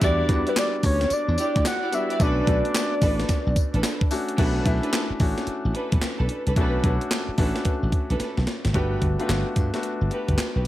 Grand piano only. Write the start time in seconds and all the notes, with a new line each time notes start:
0.01 G3 B3 D4 F#4
0.28 G3 B3 D4 F#4
1.92 G3 B3 D4 F#4
2.19 A3 C#4 D4 F#4
2.47 A3 B3 D4 F#4
4.11 A3 C#4 D4 F#4
4.38 A3 C#4 D4 F#4
4.65 A3 C#4 D4 E4
5.20 A3 C#4 D4 F#4
6.56 A3 C#4 D4 F#4
6.83 A3 C#4 D4 F#4
7.38 A3 C#4 D4 F#4
8.74 A3 B3 D4 F#4
9.19 A3 B3 D4 F4
9.27 F#4
9.74 A3 B3 D4 F#4